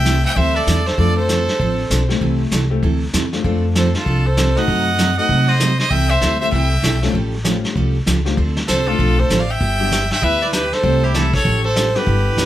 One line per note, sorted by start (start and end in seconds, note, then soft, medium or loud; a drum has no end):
0.00 0.24 C2 medium
0.00 0.60 G3 medium
0.00 0.60 A3 medium
0.00 0.60 C4 medium
0.00 0.60 E4 medium
0.00 0.60 G4 medium
0.00 0.24 E5 loud
0.00 0.25 G5 loud
0.05 0.16 C3 medium
0.05 0.16 E3 medium
0.05 0.16 G3 medium
0.05 0.16 C4 medium
0.05 0.16 E4 medium
0.05 0.17 A4 medium
0.05 snare medium
0.05 hi-hat pedal medium
0.25 0.38 E5 medium
0.25 0.38 G5 loud
0.36 0.62 D2 medium
0.36 0.56 C3 medium
0.36 0.57 E3 medium
0.36 0.57 G3 medium
0.36 0.57 C4 medium
0.36 0.57 E4 medium
0.36 0.57 A4 medium
0.36 0.57 C5 medium
0.36 0.58 E5 loud
0.36 brush sweep soft
0.36 kick soft
0.56 0.86 A4 medium
0.56 0.88 D5 medium
0.66 0.93 E2 medium
0.66 0.78 C3 medium
0.66 0.78 E3 medium
0.66 0.78 G3 medium
0.66 0.78 C4 medium
0.66 0.79 E4 medium
0.66 0.79 A4 medium
0.66 snare medium
0.66 hi-hat pedal medium
0.86 0.98 A4 medium
0.86 0.99 C5 medium
0.86 snare soft
0.98 1.47 F2 medium
0.98 1.18 F3 medium
0.98 1.44 A3 medium
0.98 1.44 C4 medium
0.98 1.19 C4 medium
0.98 1.44 D4 medium
0.98 1.19 D4 medium
0.98 1.44 F4 medium
0.98 1.16 A4 medium
0.98 1.44 A4 medium
0.98 1.19 A4 medium
0.98 1.17 D5 medium
0.98 brush sweep medium
0.98 kick soft
1.17 2.05 A4 medium
1.17 2.06 C5 medium
1.29 1.40 F3 medium
1.29 1.40 C4 medium
1.29 1.40 D4 medium
1.29 1.41 A4 medium
1.29 snare medium
1.29 hi-hat pedal medium
1.48 snare soft
1.60 1.86 A1 medium
1.60 1.80 F3 medium
1.60 1.80 C4 medium
1.60 1.81 D4 medium
1.60 1.81 A4 medium
1.60 brush sweep medium
1.60 kick soft
1.90 2.16 B1 medium
1.90 2.02 F3 medium
1.90 2.02 C4 medium
1.90 2.02 D4 medium
1.90 2.02 A4 medium
1.90 snare medium
1.90 hi-hat pedal medium
2.09 2.49 A3 medium
2.09 2.49 C4 medium
2.09 2.49 E4 medium
2.09 2.49 G4 medium
2.09 2.49 A4 medium
2.09 snare medium
2.21 2.46 C2 medium
2.21 2.41 C3 medium
2.21 2.41 E3 medium
2.21 2.42 G3 medium
2.21 2.42 C4 medium
2.21 2.42 E4 medium
2.21 2.42 A4 medium
2.21 brush sweep soft
2.21 kick soft
2.51 2.78 C2 medium
2.51 2.63 C3 medium
2.51 2.63 E3 medium
2.51 2.64 G3 medium
2.51 2.64 C4 medium
2.51 2.64 E4 medium
2.51 2.64 A4 medium
2.51 snare medium
2.51 hi-hat pedal soft
2.70 2.81 A3 medium
2.70 2.81 C4 medium
2.70 2.81 E4 medium
2.70 2.81 G4 medium
2.70 2.81 A4 medium
2.83 3.09 D2 medium
2.83 3.03 C3 medium
2.83 3.03 E3 medium
2.83 3.03 G3 medium
2.83 3.03 C4 medium
2.83 3.04 E4 medium
2.83 3.04 A4 medium
2.83 brush sweep medium
2.83 kick soft
3.13 3.39 E2 medium
3.13 3.25 C3 medium
3.13 3.25 E3 medium
3.13 3.25 G3 medium
3.13 3.25 C4 medium
3.13 3.25 E4 medium
3.13 3.25 A4 medium
3.13 snare medium
3.13 hi-hat pedal medium
3.32 3.42 A3 medium
3.32 3.43 C4 medium
3.32 3.43 D4 medium
3.32 3.43 F4 medium
3.32 3.43 A4 medium
3.32 snare soft
3.44 3.94 F2 medium
3.44 3.65 F3 medium
3.44 3.90 A3 medium
3.44 3.90 C4 medium
3.44 3.65 C4 medium
3.44 3.90 D4 medium
3.44 3.65 D4 medium
3.44 3.90 F4 medium
3.44 3.91 A4 medium
3.44 3.65 A4 medium
3.44 brush sweep soft
3.44 kick soft
3.75 3.86 F3 medium
3.75 3.86 C4 medium
3.75 3.87 D4 medium
3.75 3.87 A4 medium
3.75 3.94 A4 medium
3.75 3.94 C5 medium
3.75 snare medium
3.75 hi-hat pedal soft
3.94 4.28 F4 medium
3.94 4.28 A4 medium
3.94 snare soft
4.06 4.55 C2 medium
4.06 4.27 F3 medium
4.06 4.27 C4 medium
4.06 4.27 D4 medium
4.06 4.27 A4 medium
4.06 brush sweep soft
4.06 kick soft
4.26 4.59 A4 medium
4.26 4.59 C5 medium
4.37 4.48 F3 medium
4.37 4.48 C4 medium
4.37 4.48 D4 medium
4.37 4.49 A4 medium
4.37 snare medium
4.37 hi-hat pedal medium
4.55 4.95 A3 medium
4.55 4.95 C4 medium
4.55 4.96 D#4 medium
4.55 4.96 F#4 medium
4.55 4.96 A4 medium
4.55 5.17 D#5 medium
4.55 5.17 F#5 loud
4.55 snare soft
4.68 5.17 F#2 medium
4.68 4.88 C3 medium
4.68 4.88 F#3 medium
4.68 4.88 A3 medium
4.68 4.88 D#4 medium
4.68 4.88 F#4 medium
4.68 brush sweep soft
4.68 kick soft
4.98 5.10 C3 medium
4.98 5.10 F#3 medium
4.98 5.10 A3 medium
4.98 5.10 D#4 medium
4.98 5.10 F#4 medium
4.98 snare medium
4.98 hi-hat pedal medium
5.17 5.57 A3 medium
5.17 5.57 C4 medium
5.17 5.58 D#4 medium
5.17 5.57 F#4 medium
5.17 5.58 A4 medium
5.17 5.50 D#5 medium
5.17 5.50 F#5 loud
5.29 5.78 C3 medium
5.29 5.50 C3 medium
5.29 5.50 F#3 medium
5.29 5.50 A3 medium
5.29 5.50 D#4 medium
5.29 5.50 F#4 medium
5.29 brush sweep medium
5.29 kick soft
5.48 5.79 C5 medium
5.48 5.79 D#5 loud
5.60 5.71 C3 medium
5.60 5.71 F#3 medium
5.60 5.71 A3 medium
5.60 5.71 D#4 medium
5.60 5.72 F#4 medium
5.60 snare medium
5.60 hi-hat pedal medium
5.79 5.92 C5 medium
5.79 5.92 D#5 loud
5.79 snare soft
5.90 6.15 C2 medium
5.90 6.11 C3 medium
5.90 6.11 E3 medium
5.90 6.12 G3 medium
5.90 6.12 C4 medium
5.90 6.12 E4 medium
5.90 6.12 A4 medium
5.90 6.12 E5 medium
5.90 6.11 G5 loud
5.90 brush sweep soft
5.90 kick soft
6.09 6.39 C5 medium
6.09 6.40 E5 loud
6.21 6.47 D2 medium
6.21 6.33 C3 medium
6.21 6.33 E3 medium
6.21 6.33 G3 medium
6.21 6.33 C4 medium
6.21 6.33 E4 medium
6.21 6.33 A4 medium
6.21 snare medium
6.21 hi-hat pedal soft
6.40 6.51 A3 medium
6.40 6.51 C4 medium
6.40 6.51 E4 medium
6.40 6.51 G4 medium
6.40 6.51 A4 medium
6.40 6.51 C5 medium
6.40 6.51 E5 medium
6.51 6.78 C2 medium
6.51 6.72 C3 medium
6.51 6.73 E3 medium
6.51 6.73 G3 medium
6.51 6.73 C4 medium
6.51 6.73 E4 medium
6.51 6.73 A4 medium
6.51 7.09 E5 medium
6.51 7.10 G5 loud
6.51 brush sweep medium
6.51 kick soft
6.83 7.09 B1 medium
6.83 6.94 C3 medium
6.83 6.94 E3 medium
6.83 6.94 G3 medium
6.83 6.95 C4 medium
6.83 6.95 E4 medium
6.83 6.95 A4 medium
6.83 snare medium
6.83 hi-hat pedal medium
7.02 7.13 A3 medium
7.02 7.12 C4 medium
7.02 7.13 C#4 medium
7.02 7.13 F4 medium
7.02 7.13 A4 medium
7.02 snare soft
7.14 7.63 A1 medium
7.14 7.34 F3 medium
7.14 7.34 G3 medium
7.14 7.35 C#4 medium
7.14 7.35 G4 medium
7.14 7.35 A4 medium
7.14 brush sweep soft
7.14 kick soft
7.44 7.56 F3 medium
7.44 7.56 G3 medium
7.44 7.91 A3 medium
7.44 7.91 C4 medium
7.44 7.91 C#4 medium
7.44 7.56 C#4 medium
7.44 7.91 F4 medium
7.44 7.91 G4 medium
7.44 7.56 G4 medium
7.44 7.56 A4 medium
7.44 snare medium
7.44 hi-hat pedal medium
7.64 snare soft
7.76 8.02 C2 medium
7.76 7.96 F3 medium
7.76 7.96 G3 medium
7.76 7.96 C#4 medium
7.76 7.97 G4 medium
7.76 7.97 A4 medium
7.76 brush sweep soft
7.76 kick soft
8.06 8.32 C#2 medium
8.06 8.18 F3 medium
8.06 8.18 G3 medium
8.06 8.18 C#4 medium
8.06 8.18 G4 medium
8.06 8.18 A4 medium
8.06 snare medium
8.06 hi-hat pedal medium
8.25 8.35 A3 medium
8.25 8.35 C4 medium
8.25 8.35 D4 medium
8.25 8.36 F4 medium
8.25 8.36 G4 medium
8.25 snare soft
8.37 8.62 D2 medium
8.37 8.57 D3 medium
8.37 8.58 F3 medium
8.37 8.58 C4 medium
8.37 8.58 D4 medium
8.37 8.58 A4 medium
8.37 brush sweep medium
8.37 kick soft
8.57 snare medium
8.68 8.94 C2 medium
8.68 8.79 D3 medium
8.68 8.79 F3 medium
8.68 8.79 C4 medium
8.68 8.79 D4 medium
8.68 8.89 A4 medium
8.68 8.80 A4 medium
8.68 8.88 C5 medium
8.68 snare medium
8.68 hi-hat pedal medium
8.87 9.27 A3 medium
8.87 9.27 C4 medium
8.87 9.27 D4 medium
8.87 9.27 F4 medium
8.87 9.21 F4 medium
8.87 9.21 A4 medium
8.87 9.27 A4 medium
8.99 9.25 B1 medium
8.99 9.19 D3 medium
8.99 9.19 F3 medium
8.99 9.20 C4 medium
8.99 9.20 D4 medium
8.99 9.20 A4 medium
8.99 brush sweep soft
8.99 kick soft
9.19 9.42 A4 medium
9.19 9.41 C5 medium
9.29 9.56 A1 medium
9.29 9.41 D3 medium
9.29 9.41 F3 medium
9.29 9.41 C4 medium
9.29 9.41 D4 medium
9.29 9.41 A4 medium
9.29 snare medium
9.29 hi-hat pedal medium
9.40 9.52 D5 medium
9.40 9.52 F5 medium
9.50 10.11 E5 medium
9.50 10.11 G5 loud
9.60 10.10 G1 medium
9.60 9.81 G3 medium
9.60 9.81 B3 medium
9.60 9.81 E4 medium
9.60 9.81 G4 medium
9.60 brush sweep soft
9.60 kick soft
9.80 9.90 G3 medium
9.80 9.90 B3 medium
9.80 9.90 D4 medium
9.80 9.90 E4 medium
9.80 9.90 G4 medium
9.91 10.02 G3 medium
9.91 10.03 B3 medium
9.91 10.03 E4 medium
9.91 10.03 G4 medium
9.91 snare medium
9.91 hi-hat pedal medium
10.11 10.25 E5 medium
10.11 10.25 G5 medium
10.11 snare soft
10.22 10.71 D2 medium
10.22 10.42 G3 medium
10.22 10.43 B3 medium
10.22 10.43 E4 medium
10.22 10.43 G4 medium
10.22 10.42 B4 medium
10.22 10.44 E5 loud
10.22 brush sweep medium
10.22 kick soft
10.42 10.53 B4 medium
10.42 10.53 D5 medium
10.53 10.64 G3 medium
10.53 10.64 B3 medium
10.53 10.64 E4 medium
10.53 10.64 G4 medium
10.53 10.75 G4 medium
10.53 10.74 B4 medium
10.53 snare medium
10.53 hi-hat pedal medium
10.72 11.06 A4 medium
10.72 11.05 C5 loud
10.72 snare soft
10.82 11.33 C2 medium
10.82 11.04 C3 medium
10.82 11.04 E3 medium
10.82 11.29 G3 medium
10.82 11.04 G3 medium
10.82 11.29 A3 medium
10.82 11.29 C4 medium
10.82 11.04 C4 medium
10.82 11.30 E4 medium
10.82 11.04 E4 medium
10.82 11.30 G4 medium
10.82 11.04 A4 medium
10.82 brush sweep soft
10.82 kick soft
11.04 11.16 E4 medium
11.04 11.17 G4 medium
11.14 11.25 C3 medium
11.14 11.26 E3 medium
11.14 11.26 G3 medium
11.14 11.26 C4 medium
11.14 11.26 E4 medium
11.14 11.34 E4 medium
11.14 11.26 A4 medium
11.14 11.34 A4 medium
11.14 snare medium
11.14 hi-hat pedal medium
11.34 11.64 A4 medium
11.34 11.63 C#5 medium
11.34 kick medium
11.34 snare soft
11.45 11.94 A1 medium
11.45 11.66 F3 medium
11.45 11.66 G3 medium
11.45 11.66 C#4 medium
11.45 11.66 G4 medium
11.45 11.66 A4 medium
11.45 brush sweep soft
11.45 kick soft
11.65 11.97 A4 medium
11.65 11.98 C5 medium
11.76 11.87 F3 medium
11.76 11.87 G3 medium
11.76 11.88 C#4 medium
11.76 11.87 G4 medium
11.76 11.88 A4 medium
11.76 snare medium
11.76 hi-hat pedal medium
11.95 12.35 G3 medium
11.95 12.35 B3 medium
11.95 12.35 D4 medium
11.95 12.35 E4 medium
11.95 12.45 G4 medium
11.95 12.35 A4 medium
11.95 12.45 B4 medium
11.95 snare soft
12.06 12.31 G1 medium
12.06 12.27 G3 medium
12.06 12.27 B3 medium
12.06 12.28 E4 medium
12.06 12.28 G4 medium
12.06 brush sweep soft
12.06 kick soft
12.37 12.45 G1 medium
12.37 12.45 G3 medium
12.37 12.45 B3 medium
12.37 12.45 E4 medium
12.37 12.45 G4 medium
12.37 snare medium
12.37 hi-hat pedal medium